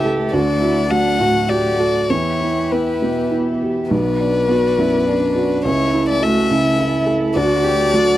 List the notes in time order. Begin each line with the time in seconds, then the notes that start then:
Already playing: C#2 C#3 A3 E4 G4 A4 E5
0.05 A4
0.33 D2 F#4 D5 F#5
0.62 E4 F#4
0.91 F#3 D4 F#5
1.20 A2 F#4
1.49 F#4 G4 D5
1.79 F#4 A4
2.10 E2 B3 E4 G4 C#5 E5
2.41 E4
2.71 B3 B4
3.02 B2
3.31 E4
3.62 G4
3.91 B1 F#4 B4 D5
4.21 D4
4.48 B3 F#4
4.78 F#2 E4
5.07 D4
5.36 F#4
5.65 C#2 A3 E4 A4 C#5 E5
5.94 E4
6.09 D5
6.22 A3 F#4 E5
6.51 C#3 E4
6.79 E4
7.06 A4
7.35 D2 F#4 D5 F#5
7.64 F#4 G4
7.94 F#3 F#4